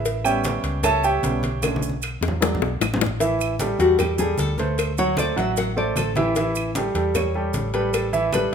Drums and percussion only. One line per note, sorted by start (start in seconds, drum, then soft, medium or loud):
0.05 cowbell loud
0.05 high conga soft
0.05 maracas medium
0.25 high conga soft
0.25 claves medium
0.25 maracas medium
0.44 cowbell medium
0.44 high conga loud
0.44 maracas medium
0.64 cowbell medium
0.64 high conga soft
0.64 maracas soft
0.83 cowbell loud
0.83 high conga soft
0.83 low conga medium
0.83 claves medium
0.83 maracas medium
1.03 high conga soft
1.03 maracas medium
1.23 cowbell medium
1.23 high conga medium
1.23 maracas medium
1.43 cowbell medium
1.43 high conga medium
1.43 maracas soft
1.63 cowbell loud
1.63 high conga medium
1.63 claves medium
1.63 maracas medium
1.76 high conga loud
1.82 maracas medium
1.89 high conga medium
2.02 cowbell medium
2.02 claves medium
2.02 maracas medium
2.23 cowbell medium
2.23 high bongo medium
2.23 maracas soft
2.28 low conga medium
2.42 cowbell loud
2.42 low bongo loud
2.42 maracas medium
2.55 low conga medium
2.62 high bongo medium
2.81 cowbell medium
2.81 low bongo medium
2.81 claves medium
2.81 maracas medium
2.94 low conga loud
3.01 cowbell medium
3.01 low bongo loud
3.01 maracas soft
3.06 low conga medium
3.20 cowbell loud
3.20 high conga soft
3.20 maracas medium
3.39 high conga soft
3.39 claves medium
3.39 maracas medium
3.59 cowbell medium
3.59 high conga loud
3.59 maracas medium
3.79 cowbell medium
3.79 high conga soft
3.79 maracas soft
3.99 cowbell loud
3.99 high conga soft
3.99 low conga medium
3.99 claves medium
3.99 maracas medium
4.18 high conga soft
4.18 low conga medium
4.18 maracas medium
4.38 cowbell medium
4.38 high conga medium
4.38 maracas medium
4.58 cowbell medium
4.58 high conga medium
4.58 maracas soft
4.78 cowbell loud
4.78 high conga soft
4.78 claves medium
4.78 maracas medium
4.98 high conga soft
4.98 maracas medium
5.17 cowbell medium
5.17 high conga medium
5.17 claves medium
5.17 maracas medium
5.38 cowbell medium
5.38 high conga soft
5.38 maracas soft
5.57 cowbell loud
5.57 high conga soft
5.57 maracas medium
5.77 high conga soft
5.96 cowbell medium
5.96 high conga medium
5.96 claves medium
5.96 maracas medium
6.15 cowbell medium
6.15 high conga medium
6.15 maracas soft
6.35 cowbell loud
6.35 high conga soft
6.35 maracas medium
6.55 high conga soft
6.55 claves medium
6.55 maracas medium
6.75 cowbell medium
6.75 high conga loud
6.75 maracas medium
6.95 cowbell medium
6.95 high conga soft
6.95 maracas soft
7.15 cowbell loud
7.15 high conga soft
7.15 low conga medium
7.15 claves medium
7.15 maracas medium
7.35 high conga soft
7.53 cowbell medium
7.53 high conga medium
7.53 maracas medium
7.74 cowbell medium
7.74 maracas soft
7.93 cowbell loud
7.93 high conga soft
7.93 claves medium
7.93 maracas medium
8.13 high conga soft
8.13 maracas medium
8.33 cowbell medium
8.33 high conga loud
8.33 claves medium
8.33 maracas medium